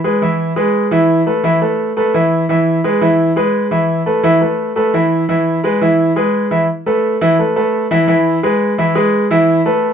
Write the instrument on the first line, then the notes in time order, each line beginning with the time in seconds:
upright piano
0.04 G#3 G#4 B4
0.22 E3 E4 E5
0.56 G#3 G#4 B4
0.91 E3 E4 E5
1.26 A3 A4 B4
1.44 E3 E4 E5
1.61 A3 A4 B4
1.97 A3 A4 B4
2.14 E3 E4 E5
2.49 E3 E4 E5
2.84 G#3 G#4 B4
3.01 E3 E4 E5
3.36 G#3 G#4 B4
3.71 E3 E4 E5
4.06 A3 A4 B4
4.23 E3 E4 E5
4.41 A3 A4 B4
4.76 A3 A4 B4
4.94 E3 E4 E5
5.29 E3 E4 E5
5.64 G#3 G#4 B4
5.81 E3 E4 E5
6.16 G#3 G#4 B4
6.51 E3 E4 E5
6.86 A3 A4 B4
7.21 E3 E4 E5
7.39 A3 A4 B4
7.56 A3 A4 B4
7.91 E3 E4 E5
8.08 E3 E4 E5
8.43 G#3 G#4 B4
8.78 E3 E4 E5
8.95 G#3 G#4 B4
9.31 E3 E4 E5
9.65 A3 A4 B4